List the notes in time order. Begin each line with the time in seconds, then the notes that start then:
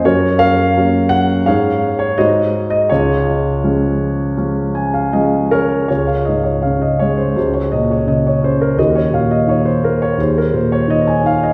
0.05 F#2 F#4 A#4 C#5
0.38 A#4 C#5 F5
0.77 F#3 A#3 C#4
1.09 F#5
1.46 G#2 G#4 C#5 F5
1.99 C#5
2.18 G#2 F#4 C5 D#5
2.70 D#5
2.89 C#2 F4 G#4 C#5
3.64 F3 G#3 C#4
4.37 F3 G#3 C#4
4.75 G#5
4.94 F5
5.13 F3 G#3 C#4 D#5
5.51 A#4 C#5
5.88 C#2 F4 G#4 C#5
6.07 F5
6.25 G#2 D#5
6.44 C#5
6.62 C#3 F5
6.81 D#5
6.99 G#3 C#5
7.17 C5
7.36 C#2 F#4 C5
7.54 C#5
7.72 A#2 D#5
7.91 C#5
8.07 C#3 D#5
8.27 C#5
8.42 C#4 C5
8.61 A#4
8.77 D#2 F#4 A#4 D#5
8.96 C#5
9.13 A#2 F5
9.31 D#5
9.47 D#3 C#5
9.65 C5
9.83 A#3 A#4
10.02 C#5
10.18 D#2 G#4 C5
10.38 A#4
10.53 A#2 C5
10.72 C#5
10.88 D#3 D#5
11.07 G#5
11.24 D#4 F5
11.43 D#5